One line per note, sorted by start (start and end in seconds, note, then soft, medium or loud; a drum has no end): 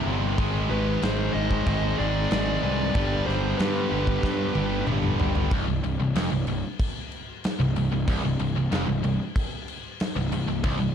0.00 0.36 C2 medium
0.00 0.36 G2 medium
0.00 0.37 C3 medium
0.00 0.37 G3 medium
0.00 0.37 D#4 loud
0.06 0.38 G1 loud
0.06 0.36 C2 medium
0.06 0.37 G2 medium
0.06 0.37 C3 loud
0.38 0.64 G#1 loud
0.38 0.69 G#2 loud
0.38 0.69 D#3 loud
0.38 0.70 G#3 loud
0.38 1.97 C4 loud
0.38 1.97 D#4 loud
0.38 1.96 G#4 loud
0.38 kick loud
0.38 crash medium
0.68 0.96 G#1 medium
0.68 1.01 G#2 medium
0.68 1.02 D#3 loud
0.68 1.02 G#3 loud
0.68 0.99 G4 medium
0.68 1.00 B4 medium
1.01 1.28 G#1 medium
1.01 1.33 G#2 medium
1.01 1.34 D#3 medium
1.01 1.34 G#3 loud
1.01 1.32 G#4 medium
1.01 1.33 C5 loud
1.01 snare loud
1.01 crash medium
1.32 1.61 G#1 medium
1.32 1.66 G#2 medium
1.32 1.66 D#3 loud
1.32 1.67 G#3 loud
1.32 1.93 C5 medium
1.32 1.94 D#5 loud
1.51 kick medium
1.66 1.93 G#1 medium
1.66 1.97 G#2 medium
1.66 1.98 D#3 loud
1.66 1.99 G#3 loud
1.66 kick loud
1.66 crash medium
1.97 2.25 G#1 loud
1.97 2.30 G#2 loud
1.97 2.30 D#3 loud
1.97 2.31 G#3 loud
1.97 2.29 C4 medium
1.97 2.29 D#4 medium
1.97 2.58 G#4 medium
1.97 2.28 G#4 medium
1.97 2.59 D5 loud
2.31 2.57 G#1 loud
2.31 2.61 G#2 medium
2.31 2.62 D#3 loud
2.31 2.63 G#3 loud
2.31 2.94 C4 medium
2.31 2.94 D#4 loud
2.31 2.94 G#4 medium
2.31 snare loud
2.31 crash medium
2.62 2.89 C2 loud
2.62 2.93 G#2 medium
2.62 2.93 D#3 medium
2.62 2.94 G#3 loud
2.62 3.23 B4 medium
2.62 3.26 D5 loud
2.95 3.21 G1 loud
2.95 3.26 G2 loud
2.95 3.26 D3 loud
2.95 3.27 G3 loud
2.95 4.54 B3 loud
2.95 4.54 D4 loud
2.95 4.53 G4 loud
2.95 kick loud
2.95 crash medium
3.26 3.53 G1 medium
3.26 3.58 G2 medium
3.26 3.58 D3 loud
3.26 3.59 G3 medium
3.26 3.56 G#4 medium
3.26 3.56 C5 medium
3.26 snare soft
3.58 3.90 G2 medium
3.58 3.86 G2 medium
3.58 3.91 D3 loud
3.58 3.92 G3 loud
3.58 4.83 G4 medium
3.58 4.83 B4 medium
3.58 snare loud
3.58 crash medium
3.91 4.18 G1 medium
3.91 4.22 G2 medium
3.91 4.23 D3 loud
3.91 4.23 G3 medium
4.07 kick medium
4.23 4.54 G2 medium
4.23 4.49 G2 medium
4.23 4.55 D3 loud
4.23 4.55 G3 loud
4.23 kick medium
4.23 snare medium
4.54 4.81 G1 loud
4.54 4.86 G2 medium
4.54 4.86 D3 loud
4.54 4.87 G3 loud
4.54 4.86 B3 medium
4.54 4.85 D4 medium
4.54 4.85 G4 medium
4.54 high tom medium
4.87 5.14 G1 loud
4.87 5.18 G2 loud
4.87 5.18 D3 loud
4.87 5.19 G3 loud
4.87 5.50 B3 medium
4.87 5.50 D4 medium
4.87 5.51 G4 medium
4.87 mid tom loud
5.03 mid tom medium
5.19 5.46 G1 loud
5.19 5.49 G2 medium
5.19 5.50 D3 medium
5.19 5.50 G3 medium
5.19 floor tom loud
5.35 floor tom medium
5.51 5.66 C1 loud
5.51 5.67 C2 loud
5.51 kick loud
5.51 crash medium
5.68 5.83 C1 medium
5.68 5.83 C2 medium
5.84 5.99 C1 medium
5.84 5.99 C2 medium
5.84 crash medium
6.00 6.15 C1 medium
6.00 6.15 C2 medium
6.15 6.31 F1 medium
6.15 6.31 F2 medium
6.15 snare loud
6.15 crash medium
6.31 6.47 C1 medium
6.31 6.47 C2 medium
6.47 6.62 C1 medium
6.47 6.64 C2 medium
6.47 crash medium
6.79 kick loud
6.79 crash medium
7.12 crash medium
7.44 snare loud
7.44 crash medium
7.59 7.75 C1 medium
7.59 7.75 C2 medium
7.76 7.91 C1 medium
7.76 7.91 C2 medium
7.76 crash medium
7.92 8.07 C1 medium
7.92 8.07 C2 medium
8.08 8.23 C1 loud
8.08 8.23 C2 loud
8.08 kick loud
8.08 crash medium
8.23 8.39 C1 medium
8.23 8.38 C2 medium
8.39 8.55 C1 medium
8.39 8.54 C2 medium
8.39 crash medium
8.56 8.71 C1 medium
8.56 8.71 C2 medium
8.71 8.87 F1 loud
8.71 8.87 F2 loud
8.71 snare loud
8.71 crash medium
8.87 9.03 C1 medium
8.87 9.02 C2 medium
9.03 9.19 C1 medium
9.03 9.20 C2 medium
9.03 crash medium
9.36 kick loud
9.36 crash medium
9.68 crash medium
10.00 snare loud
10.00 crash loud
10.16 10.31 C1 medium
10.16 10.31 C2 medium
10.32 10.47 C1 medium
10.32 10.47 C2 medium
10.32 crash medium
10.48 10.63 C1 medium
10.48 10.62 C2 medium
10.63 10.79 C1 loud
10.63 10.79 C2 loud
10.63 kick loud
10.63 crash medium
10.80 10.95 C1 medium
10.80 10.95 C2 medium